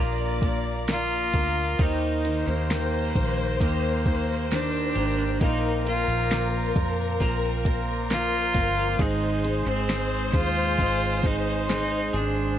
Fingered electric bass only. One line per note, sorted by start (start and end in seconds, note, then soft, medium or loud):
0.00 1.30 A#1 loud
1.34 1.76 D2 medium
1.79 2.43 D#2 medium
2.47 3.11 D#2 medium
3.15 3.57 A#1 medium
3.60 4.92 D#2 loud
4.96 5.38 G#1 medium
5.41 6.05 A#1 medium
6.08 6.72 A#1 medium
6.76 7.17 F2 medium
7.21 8.51 A#1 loud
8.55 8.96 G1 medium
8.99 9.62 G#1 loud
9.66 10.30 G#1 medium
10.33 10.75 D#2 loud
10.78 12.10 G#1 loud
12.14 12.56 G#1 medium